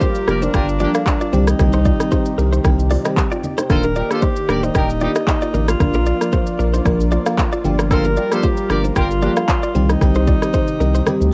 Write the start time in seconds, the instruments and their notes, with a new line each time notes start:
Already playing: analog synth pad G3 F4 A#4 D5, alto saxophone G4
0.01 clean electric guitar F4 C5, kick, high bongo, shaker
0.15 shaker
0.27 sub bass F1, fm electric piano F3 A#3 D4 G4, clean electric guitar D4 A#4, horn section G4 A#4 D5, cross-stick, shaker
0.42 alto saxophone D4, clean electric guitar D#4 C5, shaker
0.54 sub bass G1, clean electric guitar D4 A#4, horn section F4 G4 A#4, kick, cross-stick, low conga, shaker
0.69 shaker
0.80 fm electric piano F3 A#3 D4 G4, horn section A#3 D4 G4, clean electric guitar F4 D5, low bongo, shaker
0.94 clean electric guitar A4 F5, cross-stick, shaker
1.06 alto saxophone D4, kick, clap, high bongo, shaker
1.21 clean electric guitar F4 D5, shaker
1.33 sub bass C2, analog synth pad C3 C4 D#4 G4, fm electric piano D#3 G3 C4 G4, clean electric guitar D#4 C5, low bongo, low conga, shaker
1.47 alto saxophone D#4, cross-stick, low bongo, shaker
1.59 sub bass C2, fm electric piano D#3 G3 C4 G4, kick, cross-stick, low conga, shaker
1.73 clean electric guitar D#4 C5, high bongo, shaker
1.85 clean electric guitar F4 D5, kick, shaker
2.00 fm electric piano D#3 G3 C4 G4, cross-stick, shaker
2.11 clean electric guitar D#4 C5, kick, high bongo, shaker
2.25 shaker
2.38 sub bass C2, fm electric piano D#3 G3 C4 G4, clean electric guitar D4 A#4, shaker
2.53 clean electric guitar D#4 C5, shaker
2.64 sub bass C2, fm electric piano D#3 G3 C4 G4, clean electric guitar D#4 A#4, kick, cross-stick, low conga, shaker
2.79 shaker
2.90 clean electric guitar F4 D5, open hi-hat, low bongo, shaker
3.05 fm electric piano D#3 G3 C4 G4, clean electric guitar G4 D#5, cross-stick, shaker
3.17 kick, clap, high bongo, shaker
3.31 clean electric guitar F4 D5, shaker
3.43 low bongo, low conga, shaker
3.58 clean electric guitar D#4 C5, cross-stick, low bongo, shaker
3.70 sub bass D#1, fm electric piano D#3 A#3 D4 G4, analog synth pad D#3 A#3 D5, horn section F4 A4 C5, alto saxophone A#4, kick, cross-stick, low conga, shaker
3.83 clean electric guitar D4 A#4, high bongo, shaker
3.96 horn section D#4 G4 A#4, clean electric guitar F4 D5, shaker
4.10 fm electric piano D#3 A#3 D4 G4, horn section F4 A4 C5, alto saxophone G4, cross-stick, shaker
4.22 clean electric guitar D#4 C5, kick, high bongo, shaker
4.36 shaker
4.48 sub bass D1, fm electric piano D#3 A#3 D4 G4, clean electric guitar D4 A#4, horn section G4 A#4 D5, cross-stick, shaker
4.63 alto saxophone D#4, clean electric guitar D#4 C5, shaker
4.75 sub bass D#1, clean electric guitar D4 A#4, horn section D#4 G4 A#4, kick, cross-stick, low conga, shaker
4.90 shaker
5.01 fm electric piano D#3 A#3 D4 G4, horn section G3 D#4 G4, clean electric guitar F4 D5, low bongo, shaker
5.15 clean electric guitar G4 D#5, cross-stick, shaker
5.27 alto saxophone D#4, kick, clap, high bongo, shaker
5.42 clean electric guitar F4 D5, shaker
5.54 sub bass A1, clean electric guitar D4 A#4, low bongo, low conga, shaker
5.68 alto saxophone F4, cross-stick, low bongo, shaker
5.80 sub bass A#1, fm electric piano F3 A#3 D4 A#4, analog synth pad F4, kick, cross-stick, low conga, shaker
5.94 clean electric guitar D4 A#4, high bongo, shaker
6.06 clean electric guitar F4 D5, shaker
6.21 fm electric piano F3 A#3 D4 A#4, cross-stick, shaker
6.32 clean electric guitar F4 C5, kick, high bongo, shaker
6.46 shaker
6.59 sub bass A#1, fm electric piano F3 A#3 D4 A#4, clean electric guitar D4 A#4, shaker
6.74 clean electric guitar D#4 C5, shaker
6.85 sub bass A#1, fm electric piano F3 A#3 D4 A#4, clean electric guitar D4 A#4, kick, cross-stick, low conga, shaker
7.00 shaker
7.11 clean electric guitar F4 D5, low bongo, shaker
7.26 fm electric piano F3 A#3 D4 A#4, clean electric guitar A4 F5, cross-stick, shaker
7.38 kick, clap, high bongo, shaker
7.52 clean electric guitar F4 D5, shaker
7.64 sub bass G1, fm electric piano F3 A#3 D4 G4, analog synth pad G3 A#4, low bongo, low conga, shaker
7.79 clean electric guitar D4 A#4, cross-stick, low bongo, shaker
7.91 fm electric piano F3 A#3 D4 G4, horn section F4 A4 C5, alto saxophone A#4, kick, cross-stick, low conga, shaker
8.04 clean electric guitar D4 A#4, high bongo, shaker
8.16 horn section F4 G4 A#4, clean electric guitar F4 D5, shaker
8.31 fm electric piano F3 A#3 D4 G4, horn section F4 A4 C5, alto saxophone G4, cross-stick, shaker
8.43 clean electric guitar F4 C5, kick, high bongo, shaker
8.57 shaker
8.70 sub bass G1, fm electric piano F3 A#3 D4 G4, clean electric guitar D4 A#4, horn section G4 A#4 D5, alto saxophone G4, cross-stick, shaker
8.84 clean electric guitar D#4 C5, shaker
8.96 sub bass G1, clean electric guitar D4 A#4, horn section F4 G4 A#4, alto saxophone F4, kick, cross-stick, low conga, shaker
9.11 shaker
9.22 fm electric piano F3 A#3 D4 G4, horn section A#3 D4 G4, clean electric guitar F4 D5, low bongo, shaker
9.36 clean electric guitar A4 F5, cross-stick, shaker
9.48 alto saxophone F4, kick, clap, high bongo, shaker
9.63 clean electric guitar F4 D5, shaker
9.75 sub bass C2, analog synth pad C3 C4 D#4 G4, fm electric piano D#3 G3 C4 G4, clean electric guitar D#4 C5, low bongo, low conga, shaker
9.89 alto saxophone D#4, cross-stick, low bongo, shaker
10.01 sub bass C2, fm electric piano D#3 G3 C4 G4, kick, cross-stick, low conga, shaker
10.15 clean electric guitar D#4 C5, high bongo, shaker
10.27 clean electric guitar F4 D5, kick, shaker
10.42 fm electric piano D#3 G3 C4 G4, cross-stick, shaker
10.54 clean electric guitar D#4 C5, kick, high bongo, shaker
10.68 shaker
10.80 sub bass C2, fm electric piano D#3 G3 C4 G4, clean electric guitar D4 A#4, high bongo, shaker
10.95 clean electric guitar D#4 C5, shaker
11.06 fm electric piano D#3 G3 C4 G4, clean electric guitar D#4 A#4, cross-stick, low conga, shaker
11.21 sub bass D2, shaker